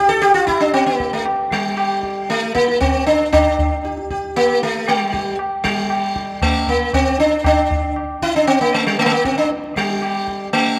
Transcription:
Already playing: G4
0.09 A4, tabla te
0.22 G4, tabla na
0.34 F4
0.47 E4, tabla ke
0.60 D4, tabla te
0.74 C4, tabla na
0.86 A#3
1.00 tabla ke
1.13 A3
1.25 tabla na
1.51 G3, tabla ke
1.77 G4, tabla na
2.03 tabla ke
2.29 A3, tabla te
2.42 tabla te
2.55 A#3, tabla ke
2.68 tabla te
2.81 C4, tabla na, tabla ge
3.07 D4, tabla te
3.33 D4, tabla na, tabla ge
3.59 tabla ge
3.85 G4, tabla te
3.97 tabla te
4.10 G4, tabla ke
4.24 tabla te
4.36 A#3, tabla na
4.61 A3, tabla te
4.88 G3, tabla na
5.12 G4, tabla ke
5.39 tabla na
5.64 G3, tabla ke
5.90 tabla na
6.16 tabla ke
6.42 A3, tabla na, tabla ge
6.67 A#3, tabla ge
6.93 C4, tabla na, tabla ge
7.19 D4, tabla te
7.44 D4, tabla na, tabla ge
7.71 tabla ge
7.96 tabla na
8.22 E4, tabla ke
8.36 D4
8.47 C4, tabla na
8.61 A#3
8.74 A3, tabla te
8.87 G3
8.99 A3 A#3, tabla na
9.06 A3
9.12 A#3
9.25 C4, tabla ke
9.38 D4
9.51 tabla te
9.64 tabla te
9.76 G3 G4, tabla ke
9.89 tabla te
10.02 G4, tabla na
10.28 tabla ke
10.53 A3, tabla na

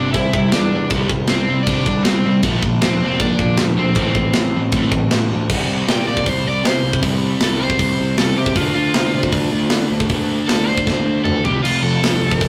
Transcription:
Already playing: G1 C3 G3 C4 D4 D5
0.13 C3 G3 E4 E5, kick, crash
0.33 C3 G3, kick
0.52 E2 C3 G3 D4 D5, snare, crash
0.75 C3 G3
0.90 C2 C3, kick, crash
0.94 G3 C4
1.09 C2 C3 G3, kick
1.27 C2 C4 C5, snare, crash
1.31 C3 G3
1.49 C2 C3 G3
1.63 C2 D5, crash
1.67 C3 G3 C4 D4, kick
1.86 C2 C3 G3, kick
2.03 C2 C3 G3 C4 C5, snare, crash
2.25 C2 C3 G3
2.43 A#1 A#2 F3 A#3, kick, crash
2.63 A#1 A#2 F3, kick
2.81 D2 A#2 F3 C4 C5, snare, crash
3.00 F1 A#2
3.04 F3 A#3
3.19 A#2 D4 D5, kick, crash
3.24 A#2 F3
3.39 A#2 F3, kick
3.57 D2 F3, snare, crash
3.61 A#2
3.78 A#2 F3 C4 C5
3.95 A1 A2 E3, kick, crash
3.99 A3
4.15 A1 A2 E3, kick
4.33 A1 E3, snare, crash
4.37 A2
4.54 A1 A2 E3
4.72 A1 A2 E3, kick, crash
4.76 A3
4.91 A1 A2 E3, kick
5.11 A1 A2 E3, snare, crash
5.31 D2 A2 E3
5.50 C2 C3 G3, kick, crash
5.55 C4
5.68 C2
5.88 A#2 G5, snare, open hi-hat
6.08 A#2 D5
6.17 kick
6.26 C2 C5, kick, open hi-hat
6.46 C2 D5
6.64 C3 C5, snare, open hi-hat
6.84 C2
6.93 kick
7.02 C2 C3 G3, kick, open hi-hat
7.06 C4
7.40 C2 A4, snare, open hi-hat
7.63 C5
7.70 kick
7.79 C2, kick, open hi-hat
8.00 C2
8.18 C2 A4, snare, open hi-hat
8.37 C3 G4
8.46 kick
8.55 D2 D3 A3 F4, kick, open hi-hat
8.60 D4
8.75 D2 F4
8.94 C3, snare, open hi-hat
9.14 C3
9.23 kick
9.32 D2, kick, open hi-hat
9.51 D2
9.70 D3, snare, open hi-hat
9.90 D2
10.00 kick
10.09 D2 D3, kick, open hi-hat
10.13 A3 D4
10.48 D2 A4, snare, open hi-hat
10.68 C5
10.77 kick
10.87 D2, kick, snare
11.06 D2
11.24 D2 A4, mid tom
11.44 F1 F2 C3 G4, floor tom
11.48 F3
11.63 F1 F4, crash
11.83 F1 A4
12.03 D2, snare, open hi-hat
12.21 D2
12.31 kick
12.41 F1, kick, open hi-hat

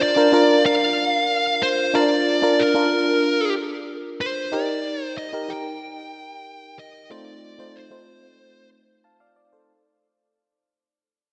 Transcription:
Already playing: D4 F4 A#4
0.01 D5
0.16 D4 F4 A#4
0.32 D4 F4 A#4
0.66 F5
1.63 C5
1.94 D4 F4 A#4 D5
2.42 D4 F4 A#4
2.59 A#4
2.74 D4 F4 A#4
4.21 C5
4.52 D#4 G4 A#4 D5
5.03 C5
5.18 D#5
5.33 D#4 G4 A#4
5.49 D#4 G4 A#4 G5
6.79 D#5
7.10 A3 C4 D#4 F4 C5 D5
7.58 A3 C4 D#4 F4 C5
7.76 C5
7.91 A3 C4 D#4 F4 C5
9.04 F5 A5
9.20 D5 F5
9.36 D5
9.53 A4 C5

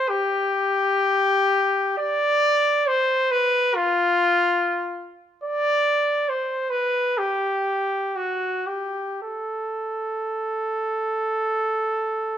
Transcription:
Already playing: C5
0.09 G4
1.98 D5
2.88 C5
3.31 B4
3.75 F4
5.43 D5
6.29 C5
6.70 B4
7.18 G4
8.16 F#4
8.67 G4
9.23 A4

